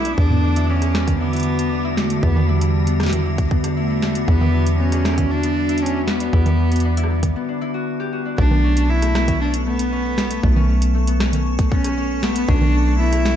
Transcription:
Already playing: acid bass B1, ambient pad D3 B3 A4, harp A3 B3 F#4, cello E4, synth texture D6
0.05 harp D4, closed hi-hat
0.18 acid bass E2, ambient pad D3 G3 F#4, cello D4, kick
0.31 harp B3, low conga
0.43 harp D4
0.56 harp E4, closed hi-hat
0.69 cello C#4, harp E4
0.82 cross-stick, closed hi-hat
0.95 harp B3, cross-stick, snare
1.08 harp D4, kick, closed hi-hat, low conga
1.20 cello B3, harp E4
1.33 harp E4, closed hi-hat
1.36 closed hi-hat
1.40 closed hi-hat
1.43 closed hi-hat
1.59 harp B3, closed hi-hat
1.72 harp D4
1.85 harp E4
1.97 cello A3, harp E4, snare
2.10 closed hi-hat
2.23 acid bass E2, harp B3, cello B3, kick
2.36 harp D4, low conga
2.49 cello G3, harp E4
2.61 harp E4, closed hi-hat
2.87 harp B3, closed hi-hat
3.00 harp D4, cross-stick, snare
3.03 snare
3.06 snare
3.10 harp E4, snare, closed hi-hat, low conga
3.26 harp E4
3.38 kick, closed hi-hat
3.51 harp B3, kick
3.64 harp D4, cross-stick, closed hi-hat
3.77 cello A3, harp E4
3.90 harp E4
4.02 snare
4.15 harp B3, closed hi-hat
4.28 acid bass E2, cello B3, harp D4, kick
4.41 harp E4, low conga
4.54 harp E4
4.67 closed hi-hat
4.79 harp B3, cello C#4
4.92 harp D4, cross-stick, closed hi-hat
5.05 harp E4, cross-stick, snare
5.09 cross-stick
5.14 cross-stick
5.18 harp E4, kick, closed hi-hat, low conga
5.31 cello D4
5.43 harp B3, closed hi-hat
5.56 harp D4
5.69 harp E4, closed hi-hat
5.78 closed hi-hat
5.82 cello C#4, harp E4
5.86 closed hi-hat
6.08 harp B3, cello B3, snare
6.20 harp D4, closed hi-hat
6.33 acid bass E2, harp E4, kick
6.46 harp E4, closed hi-hat, low conga
6.72 harp B3, closed hi-hat
6.76 closed hi-hat
6.80 closed hi-hat
6.85 harp D4
6.97 harp E4, closed hi-hat
7.04 cross-stick
7.10 harp E4
7.23 kick, closed hi-hat, low conga
7.36 harp B3
7.49 harp D4
7.61 harp E4
7.74 harp F#4
8.00 harp G4
8.13 harp F#4
8.25 harp D4
8.38 acid bass B1, harp A3, cello D4, ambient pad A4 C#6, kick
8.51 harp B3, low conga
8.64 harp C#4
8.77 harp C#4, closed hi-hat
8.90 cello E4
9.02 harp A3, cross-stick, closed hi-hat
9.15 harp B3, cross-stick, snare
9.28 harp C#4, kick, closed hi-hat, low conga
9.41 harp C#4, cello D4
9.54 closed hi-hat
9.67 harp A3, cello B3
9.79 harp B3, closed hi-hat
9.92 harp C#4
10.05 harp C#4
10.18 snare
10.31 harp A3, closed hi-hat
10.43 acid bass B1, cello A3, harp B3, kick
10.56 harp C#4, low conga
10.69 harp C#4
10.82 closed hi-hat
10.95 harp A3
11.07 harp B3, closed hi-hat
11.20 harp C#4, cross-stick, snare
11.33 harp C#4, closed hi-hat, low conga
11.59 harp A3, kick, closed hi-hat
11.72 harp B3, cello C#4, kick
11.84 harp C#4, cross-stick, closed hi-hat
11.97 harp C#4
12.23 harp A3, cello B3, snare
12.36 harp B3, closed hi-hat
12.48 acid bass B1, harp C#4, cello D4, kick
12.61 harp C#4, low conga
12.87 harp A3
13.00 harp B3, cello E4
13.13 harp C#4, cross-stick, closed hi-hat
13.25 harp C#4, snare

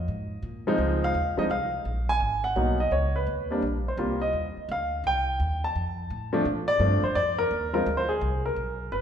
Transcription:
Already playing: grand piano D#5
0.08 upright bass G#2
0.43 upright bass A#2
0.67 grand piano F3 G#3 C4 D#4
0.78 upright bass C#2
1.04 grand piano F5
1.14 upright bass D#2
1.37 grand piano F3 G#3 C4 D#4 D#5, muted upright bass stroke
1.50 upright bass C2, grand piano F5
1.85 upright bass A#1
2.09 grand piano G#5
2.20 upright bass G#1
2.44 grand piano F#5
2.56 upright bass B1, grand piano F#3 A#3 B3 D#4
2.80 grand piano D#5
2.91 upright bass C#2, grand piano C#5
3.16 grand piano B4
3.27 upright bass D#2
3.50 grand piano G3 A#3 C4 D4
3.62 upright bass A#1
3.88 grand piano C5
3.97 upright bass C2, grand piano G3 A#3 C4 F4
4.22 grand piano D#5
4.33 upright bass D#2
4.57 muted upright bass stroke
4.69 upright bass D2, grand piano F5
5.04 upright bass C2, grand piano G5
5.40 upright bass D#2
5.64 grand piano A5
5.75 upright bass F2
6.10 upright bass A2
6.33 grand piano F3 A3 C4 D4
6.45 upright bass A#2
6.68 grand piano D5
6.79 upright bass G2, grand piano F3 A3 C4 D4
7.03 grand piano C5, muted upright bass stroke
7.15 upright bass F2, grand piano D5
7.38 grand piano A#4
7.51 upright bass D#2
7.73 grand piano F3 G#3 C4 F4 A#4
7.86 upright bass D2
7.97 grand piano C5
8.09 grand piano G#4
8.21 upright bass C2
8.46 grand piano A#4
8.56 upright bass B1
8.92 upright bass G1, grand piano B4

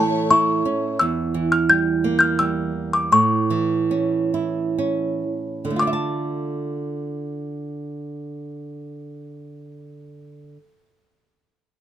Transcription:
Already playing: nylon-string guitar A2 E3 A3, string section A3 E4 C#5, music box A5 C#6
0.31 nylon-string guitar E4, music box C#6
0.65 nylon-string guitar C#4
0.99 nylon-string guitar E2, music box E6
1.34 nylon-string guitar E3
1.52 music box F6
1.69 nylon-string guitar G3, music box G6
2.04 nylon-string guitar A#3
2.19 music box F6 G6
2.39 nylon-string guitar G3, music box E6
2.93 music box D6
3.12 nylon-string guitar A2, music box C#6
3.50 nylon-string guitar E3
3.91 nylon-string guitar C#4
4.34 nylon-string guitar E4
4.78 nylon-string guitar C#4
5.65 nylon-string guitar D3
5.70 nylon-string guitar A3
5.76 nylon-string guitar F4, music box D6
5.82 nylon-string guitar D5
5.87 nylon-string guitar E5
5.93 nylon-string guitar A5

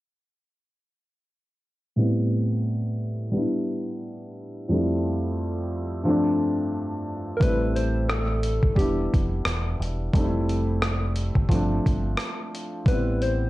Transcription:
1.96 felt piano A2 G3 B3 C4
2.01 felt piano E4
3.31 felt piano G3 B3 D4
3.37 felt piano E4
4.68 felt piano F2 G3 A3 C4
4.74 felt piano E4
6.03 felt piano G2 F3 A3 C4
6.09 felt piano D4
7.37 felt piano G3, soft synth lead A#4
7.41 fingered electric bass A1, felt piano A3 C4 E4, soft synth lead B4, kick, closed hi-hat
7.76 soft synth lead C5, closed hi-hat
8.09 soft synth lead A4, cross-stick, closed hi-hat
8.43 closed hi-hat
8.63 fingered electric bass G1, kick
8.75 fingered electric bass E1, felt piano G3 B3 D4, soft synth lead G4, kick, closed hi-hat
8.80 felt piano E4
9.14 fingered electric bass F1, kick, closed hi-hat
9.45 fingered electric bass E1, cross-stick, closed hi-hat
9.79 fingered electric bass E1, closed hi-hat
10.13 fingered electric bass F1, felt piano G3 A3 C4, kick, closed hi-hat
10.18 felt piano D#4
10.25 felt piano E4
10.49 closed hi-hat
10.82 cross-stick, closed hi-hat
11.16 closed hi-hat
11.35 fingered electric bass G1, kick
11.49 fingered electric bass G1, felt piano F3 A3 C4, kick, closed hi-hat
11.54 felt piano D4
11.86 fingered electric bass G1, kick, closed hi-hat
12.17 cross-stick, closed hi-hat
12.55 closed hi-hat
12.86 fingered electric bass A1, felt piano G3 B3, soft synth lead B4, kick, closed hi-hat
12.90 felt piano C4 E4
13.22 soft synth lead C5, closed hi-hat

